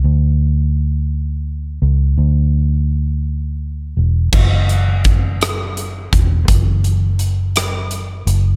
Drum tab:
CC |------|------|x-----|------|
HH |------|------|-xxxxx|xxxxxx|
SD |------|------|---r--|---r--|
BD |------|------|o-o--o|o-----|